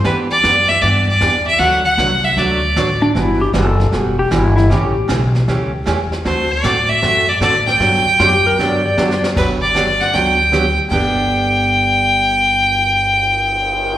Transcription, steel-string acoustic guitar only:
X:1
M:4/4
L:1/16
Q:"Swing" 1/4=155
K:G
V:1 name="Steel-string acoustic guitar"
[E,B,DG]2 z2 [E,B,DG] z3 [E,B,DG]2 z2 [E,B,DG] z3 | [D,F,A,DF]2 z2 [D,F,A,DF] z3 [D,F,A,DF]2 z2 [D,F,A,DF] z3 | [E,G,B,F]2 z2 [E,G,B,F] z3 [E,G,B,F]2 z2 [E,G,B,F] z3 | [^C,E,A,^CG]2 z2 [C,E,A,CG] z3 [C,E,A,CG]2 z2 [C,E,A,CG] z3 |
[D,A,CFA]2 z2 [D,A,CFA] z3 [D,A,CFA]2 z2 [D,A,CFA] z3 | [D,F,B,DG]2 z2 [D,F,B,DG] z3 [D,F,B,DG]2 z2 [D,F,B,DG] z3 | [D,F,B,DG]2 z2 [D,F,B,DG] z3 [D,F,B,DG]2 z2 [D,F,B,DG] z3 | [G,,D,B,DG]16- |
[G,,D,B,DG]16 |]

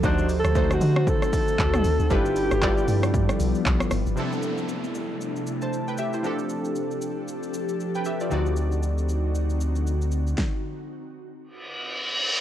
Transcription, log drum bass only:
X:1
M:4/4
L:1/16
Q:"Swing 16ths" 1/4=116
K:Ddor
V:1 name="Log drum bass" clef=bass
D,,3 D,,3 D,2 z4 D,,2 D,, D,, | G,,,3 G,,,3 G,,2 G,, z B,,, z B,,, z G,,, G,,, | z16 | z16 |
z16 | z16 |]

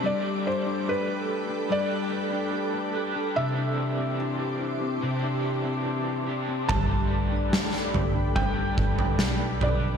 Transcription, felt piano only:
X:1
M:4/4
L:1/8
Q:1/4=72
K:G
V:1 name="Felt piano"
d c B2 d4 | e2 z6 | a3 z g3 d |]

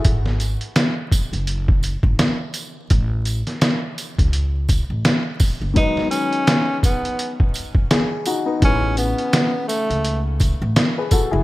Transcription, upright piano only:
X:1
M:4/4
L:1/16
Q:"Swing 16ths" 1/4=84
K:Alyd
V:1 name="Upright piano"
z16 | z16 | z12 G2 [DF] [B,D]- | [B,D] z12 [GB] [FA] [EG] |]
V:2 name="Upright piano" clef=bass
z16 | z16 | [D,F,G,B,]12- [D,F,G,B,]2 z2 | [C,E,B,G]12- [C,E,B,G]2 z2 |]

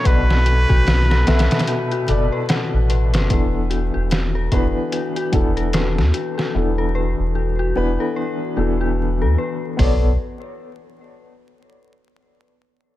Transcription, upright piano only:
X:1
M:4/4
L:1/8
Q:"Swing 16ths" 1/4=74
K:Edor
V:1 name="Upright piano"
[B,,B,Ad]3 [B,,B,Ae]2 [B,,B,Ad]3 | [E,B,DA]3 [E,B,DB]2 [E,B,DA]3 | [E,B,DA]3 [E,B,DB]2 [E,B,DA]3 | [B,Acd] z6 z |]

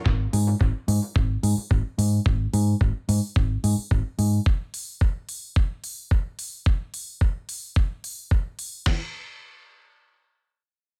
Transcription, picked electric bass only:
X:1
M:4/4
L:1/8
Q:1/4=109
K:Cphr
V:1 name="Picked electric bass" clef=bass
A,,, A,, A,,, A,, A,,, A,, A,,, A,, | A,,, A,, A,,, A,, A,,, A,, A,,, A,, | z8 | z8 |
z8 |]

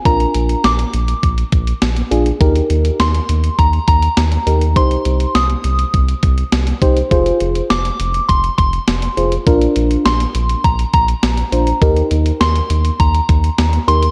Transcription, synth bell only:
X:1
M:4/4
L:1/8
Q:1/4=102
K:Bbmix
V:1 name="Synth bell"
b2 d'3 z3 | z2 c'2 b b3 | c'2 e'3 z3 | z2 d'2 c' c'3 |
z2 c'2 b b3 | z2 c'2 b3 c' |]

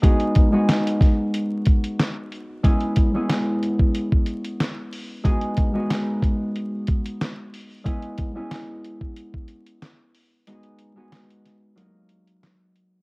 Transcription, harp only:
X:1
M:4/4
L:1/16
Q:"Swing 16ths" 1/4=92
K:G#m
V:1 name="Harp"
[G,B,DFG]3 [G,B,DFG]8- [G,B,DFG]3 z2 | [G,B,CEG]3 [G,B,CEG]12 z | [G,B,DFG]3 [G,B,DFG]8- [G,B,DFG]3 z2 | [G,B,CEG]3 [G,B,CEG]12 z |
[G,B,DFG]3 [G,B,DFG]4- [G,B,DFG] [F,A,DFA]6 z2 |]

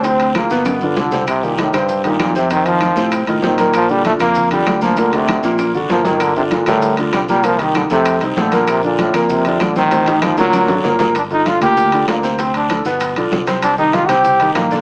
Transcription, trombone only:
X:1
M:4/4
L:1/8
Q:1/4=194
K:Gm
V:1 name="Trombone" clef=bass
C2 B,2 =B,2 D,2 | C, B,, A,, G,,2 B,, B,, C, | E, F,3 z2 E,2 | F, G, A, B,2 G,2 F, |
D, C,3 z2 F, E, | D, C, B,, A,,2 z G, G, | F, E, D, C,2 z D,2 | C, B,, A,, B,, C,2 D, E,- |
E,2 F, ^F,4 z | D E F G3 B,2 | C D2 z4 z | D E F G3 B,2 |]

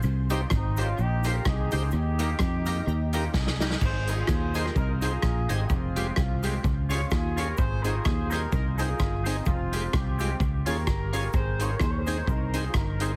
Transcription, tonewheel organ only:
X:1
M:4/4
L:1/16
Q:"Swing" 1/4=128
K:Ab
V:1 name="Tonewheel organ"
z2 [EGc] z3 [EGc] z3 [EGc] z3 [EGc] z | z2 [EGB] z3 [EGB] z [GB]2 [EGB] z3 [EGB] z | z2 [EAc] z [Ac]2 [EAc] z3 [EAc] z3 [EAc] z | z2 [FGA] z [GA]2 [FGA] z3 [DFA] z3 [DFA] z |
z2 [CEA] z [EA]2 [CEA] z3 [CEA] z3 [CEA] z | z2 [A,FG] z [FG]2 [A,FG] z3 [DFA] z3 [DFA] z | z2 [CEA] z [EA]2 [CEA] z3 [CEA] z3 [CEA] z |]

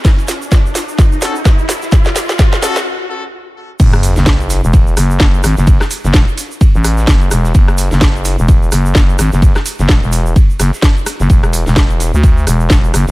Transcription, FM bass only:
X:1
M:4/4
L:1/16
Q:"Swing 16ths" 1/4=128
K:F#m
V:1 name="FM bass" clef=bass
z16 | z16 | F,,,3 F,,,4 E,,,3 F,,,2 F,,,2 G,,, F,,,- | F,,, z2 F,,, E,,, z4 A,,,3 F,,,2 E,,,2 |
F,,,3 F,,,4 E,,,3 F,,,2 F,,,2 G,,, F,,,- | F,,, z2 F,,, E,,, E,,,3 z2 F,,, z4 F,,, | E,,,3 E,,,4 D,,3 E,,,2 E,,,2 F,,, E,,, |]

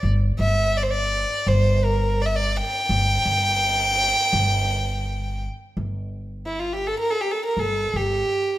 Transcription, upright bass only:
X:1
M:4/4
L:1/8
Q:1/4=84
K:none
V:1 name="Upright bass" clef=bass
G,,, G,,,3 G,,,4 | G,,, G,,,3 G,,,4 | G,,,4 z G,,, G,,, z |]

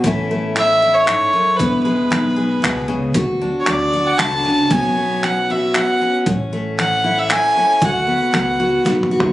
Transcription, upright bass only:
X:1
M:3/4
L:1/8
Q:1/4=116
K:A
V:1 name="Upright bass" clef=bass
A,,,6 | E,,,2 B,,,2 C,,2 | D,,2 D,,2 C,,2 | B,,,6 |
A,,,6 | D,,2 C,,2 B,,,2 |]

